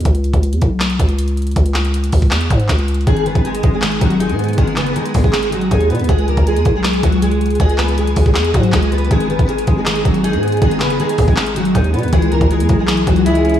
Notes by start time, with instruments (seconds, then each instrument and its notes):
0.00 closed hi-hat
0.05 808-style bass C#2, kick, closed hi-hat
0.15 closed hi-hat
0.24 closed hi-hat
0.33 808-style bass C#2, kick, closed hi-hat
0.43 closed hi-hat
0.52 808-style bass E2, closed hi-hat
0.61 808-style bass B1, kick, closed hi-hat
0.80 snare, clap, closed hi-hat
0.90 closed hi-hat
0.99 808-style bass C#2, kick, closed hi-hat
1.09 closed hi-hat
1.19 closed hi-hat
1.28 closed hi-hat
1.37 closed hi-hat
1.42 closed hi-hat
1.47 closed hi-hat
1.51 closed hi-hat
1.56 808-style bass C#2, kick, closed hi-hat
1.66 closed hi-hat
1.74 snare, clap, closed hi-hat
1.85 closed hi-hat
1.94 closed hi-hat
2.04 closed hi-hat
2.12 808-style bass C#2, kick, open hi-hat
2.22 kick
2.31 808-style bass E2, snare, clap, closed hi-hat
2.41 closed hi-hat
2.50 808-style bass G#2, kick, closed hi-hat
2.60 closed hi-hat
2.69 808-style bass C#2, kick, snare, clap, closed hi-hat
2.79 closed hi-hat
2.88 closed hi-hat
2.94 closed hi-hat
3.01 closed hi-hat
3.07 808-style bass G#1, clean electric guitar D#3, steel-string acoustic guitar G#3 G#4, kick, closed hi-hat
3.17 closed hi-hat
3.26 clean electric guitar D#3, steel-string acoustic guitar B3 B4, closed hi-hat
3.35 808-style bass G#1, kick, closed hi-hat
3.44 clean electric guitar D#3, steel-string acoustic guitar G#3 G#4, closed hi-hat
3.55 closed hi-hat
3.63 808-style bass G#1, clean electric guitar G#3, kick, closed hi-hat
3.74 steel-string acoustic guitar G#3 G#4
3.82 clean electric guitar D#3, snare, clap, closed hi-hat
3.92 closed hi-hat
4.01 808-style bass G#1, clean electric guitar D#3, steel-string acoustic guitar F#3 F#4, kick, closed hi-hat
4.10 closed hi-hat
4.20 steel-string acoustic guitar G#3 G#4, clean electric guitar D#4, closed hi-hat
4.29 808-style bass G#2, closed hi-hat
4.39 clean electric guitar B3, closed hi-hat
4.44 closed hi-hat
4.49 closed hi-hat
4.53 closed hi-hat
4.58 808-style bass G#1, clean electric guitar D#3, steel-string acoustic guitar G#3 G#4, kick, closed hi-hat
4.67 closed hi-hat
4.76 808-style bass F#1, clean electric guitar D#3, steel-string acoustic guitar B3 B4, snare, clap, closed hi-hat
4.86 closed hi-hat
4.96 clean electric guitar D#3, steel-string acoustic guitar G#3 G#4, closed hi-hat
5.06 closed hi-hat
5.14 808-style bass D#2, clean electric guitar G#3, kick, open hi-hat
5.24 808-style bass G#1, steel-string acoustic guitar G#3 G#4, kick
5.33 clean electric guitar D#3, snare, clap, closed hi-hat
5.43 closed hi-hat
5.52 clean electric guitar D#3, steel-string acoustic guitar F#3 F#4, closed hi-hat
5.61 closed hi-hat
5.71 808-style bass D#2, steel-string acoustic guitar G#3 G#4, clean electric guitar D#4, kick, closed hi-hat
5.80 closed hi-hat
5.89 808-style bass B2, clean electric guitar B3, steel-string acoustic guitar B3 B4, closed hi-hat
5.95 closed hi-hat
5.99 808-style bass D#2, closed hi-hat
6.04 closed hi-hat
6.09 808-style bass C#2, steel-string acoustic guitar G#3 G#4, kick, closed hi-hat
6.18 closed hi-hat
6.28 steel-string acoustic guitar A#3 A#4, closed hi-hat
6.37 808-style bass C#2, kick, closed hi-hat
6.47 steel-string acoustic guitar G#3 G#4, closed hi-hat
6.56 808-style bass E2, closed hi-hat
6.65 808-style bass B1, kick, closed hi-hat
6.75 steel-string acoustic guitar G#3 G#4
6.84 snare, clap, closed hi-hat
6.93 closed hi-hat
7.03 808-style bass C#2, steel-string acoustic guitar F#3 F#4, kick, closed hi-hat
7.12 closed hi-hat
7.22 steel-string acoustic guitar G#3 G#4, closed hi-hat
7.31 closed hi-hat
7.41 closed hi-hat
7.46 closed hi-hat
7.50 closed hi-hat
7.55 closed hi-hat
7.60 808-style bass C#2, steel-string acoustic guitar G#3 G#4, kick, closed hi-hat
7.69 closed hi-hat
7.78 steel-string acoustic guitar B3 B4, snare, clap, closed hi-hat
7.88 closed hi-hat
7.98 steel-string acoustic guitar G#3 G#4, closed hi-hat
8.07 closed hi-hat
8.16 808-style bass C#2, kick, open hi-hat
8.26 steel-string acoustic guitar G#3 G#4, kick
8.35 808-style bass E2, snare, clap, closed hi-hat
8.44 closed hi-hat
8.54 808-style bass G#2, steel-string acoustic guitar F#3 F#4, kick, closed hi-hat
8.63 closed hi-hat
8.72 808-style bass C#2, steel-string acoustic guitar G#3 G#4, kick, snare, clap, closed hi-hat
8.82 closed hi-hat
8.92 steel-string acoustic guitar B3 B4, closed hi-hat
8.98 closed hi-hat
9.05 closed hi-hat
9.11 808-style bass G#1, clean electric guitar D#3, steel-string acoustic guitar G#3 G#4, kick, closed hi-hat
9.20 closed hi-hat
9.29 clean electric guitar D#3, steel-string acoustic guitar B3 B4, closed hi-hat
9.39 808-style bass G#1, kick, closed hi-hat
9.48 clean electric guitar D#3, steel-string acoustic guitar G#3 G#4, closed hi-hat
9.58 closed hi-hat
9.67 808-style bass G#1, clean electric guitar G#3, kick, closed hi-hat
9.77 steel-string acoustic guitar G#3 G#4
9.86 clean electric guitar D#3, snare, clap, closed hi-hat
9.95 closed hi-hat
10.05 808-style bass G#1, clean electric guitar D#3, steel-string acoustic guitar F#3 F#4, kick, closed hi-hat
10.14 closed hi-hat
10.24 steel-string acoustic guitar G#3 G#4, clean electric guitar D#4, closed hi-hat
10.33 808-style bass G#2, closed hi-hat
10.43 clean electric guitar B3, closed hi-hat
10.48 closed hi-hat
10.52 closed hi-hat
10.57 closed hi-hat
10.61 808-style bass G#1, clean electric guitar D#3, steel-string acoustic guitar G#3 G#4, kick, closed hi-hat
10.71 closed hi-hat
10.80 808-style bass F#1, clean electric guitar D#3, steel-string acoustic guitar B3 B4, snare, clap, closed hi-hat
10.90 closed hi-hat
10.99 clean electric guitar D#3, steel-string acoustic guitar G#3 G#4, closed hi-hat
11.09 closed hi-hat
11.18 808-style bass D#2, clean electric guitar G#3, kick, open hi-hat
11.28 808-style bass G#1, steel-string acoustic guitar G#3 G#4, kick
11.37 clean electric guitar D#3, snare, clap, closed hi-hat
11.46 closed hi-hat
11.56 clean electric guitar D#3, steel-string acoustic guitar F#3 F#4, closed hi-hat
11.65 closed hi-hat
11.75 808-style bass D#2, steel-string acoustic guitar G#3 G#4, clean electric guitar D#4, kick, closed hi-hat
11.84 closed hi-hat
11.93 808-style bass B2, clean electric guitar B3, steel-string acoustic guitar B3 B4, closed hi-hat
11.99 closed hi-hat
12.03 808-style bass D#2, closed hi-hat
12.08 closed hi-hat
12.12 808-style bass C#2, clean electric guitar E3, steel-string acoustic guitar G#3 G#4, kick, closed hi-hat
12.22 closed hi-hat
12.31 clean electric guitar E3, steel-string acoustic guitar A#3 A#4, closed hi-hat
12.41 808-style bass C#2, kick, closed hi-hat
12.51 clean electric guitar E3, steel-string acoustic guitar G#3 G#4, closed hi-hat
12.60 808-style bass E2, closed hi-hat
12.69 808-style bass B1, clean electric guitar G#3, kick, closed hi-hat
12.79 steel-string acoustic guitar G#3 G#4
12.87 clean electric guitar E3, snare, clap, closed hi-hat
12.97 closed hi-hat
13.07 808-style bass C#2, clean electric guitar E3, steel-string acoustic guitar F#3 F#4, kick, closed hi-hat
13.16 closed hi-hat
13.26 steel-string acoustic guitar G#3 G#4, clean electric guitar E4, closed hi-hat
13.35 closed hi-hat
13.44 clean electric guitar C#4, closed hi-hat
13.49 closed hi-hat
13.54 closed hi-hat